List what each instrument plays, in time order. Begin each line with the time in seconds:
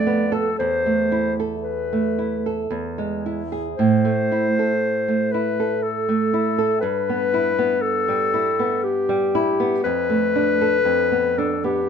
Already playing: nylon-string guitar F2 A3, clarinet D5
0.07 nylon-string guitar B3
0.32 nylon-string guitar A4, clarinet A4
0.59 nylon-string guitar E2, clarinet C5
0.86 nylon-string guitar A3
1.12 nylon-string guitar E4
1.40 nylon-string guitar A4
1.63 clarinet B4
1.93 nylon-string guitar A3
2.19 nylon-string guitar E4
2.46 nylon-string guitar A4
2.71 nylon-string guitar E2
2.98 nylon-string guitar G#3
3.26 nylon-string guitar E4
3.52 nylon-string guitar G#4
3.76 nylon-string guitar A2, clarinet C5
4.05 nylon-string guitar A3
4.32 nylon-string guitar E4
4.59 nylon-string guitar A4
5.08 nylon-string guitar A3
5.32 nylon-string guitar E4, clarinet B4
5.60 nylon-string guitar A4
5.83 clarinet A4
6.09 nylon-string guitar A3
6.34 nylon-string guitar E4
6.58 nylon-string guitar A4
6.81 nylon-string guitar G2, clarinet B4
7.09 nylon-string guitar B3
7.34 nylon-string guitar E4
7.59 nylon-string guitar B3
7.82 clarinet A4
8.08 nylon-string guitar G3
8.34 nylon-string guitar E4
8.59 nylon-string guitar B3
8.83 clarinet G4
9.09 nylon-string guitar G3
9.35 nylon-string guitar E4
9.60 nylon-string guitar B3
9.84 nylon-string guitar F2, clarinet B4
10.10 nylon-string guitar A3
10.36 nylon-string guitar D4
10.61 nylon-string guitar A4
10.85 nylon-string guitar F2
11.12 nylon-string guitar B3
11.38 nylon-string guitar D4, clarinet A4
11.64 nylon-string guitar B3, clarinet G4